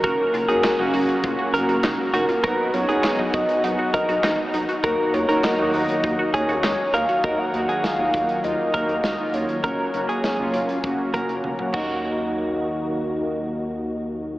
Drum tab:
CC |----------------|----------------|----------------|----------------|
HH |x-xxx-oxx-xxx-xx|x-xxx-xxx-xxx-xx|x-xxx-oxx-xxx-xx|x-xxx-xxx-xxx-xx|
CP |----x-------x---|----x-------x---|----x-------x---|----------------|
SD |----o-------o---|----o-------o---|----o-------o---|----o-------o---|
T1 |----------------|----------------|----------------|----------------|
T2 |----------------|----------------|----------------|----------------|
BD |o-------o-------|o-----o---o-----|o-------o-o-----|o-----o---o-----|

CC |--------------x-|----------------|
HH |x-xxx-xxx-xx----|----------------|
CP |----------------|----------------|
SD |----o-----------|----------------|
T1 |------------o---|----------------|
T2 |-------------o--|----------------|
BD |o-------o-o---o-|----------------|